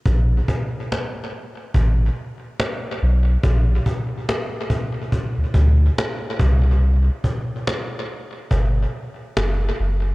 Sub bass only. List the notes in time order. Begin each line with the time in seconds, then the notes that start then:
0.06 A#1
1.75 A1
3.02 B1
3.44 A#1
5.38 D2
5.54 D2
6.40 C2
8.51 G1
9.37 F#1
9.79 F#1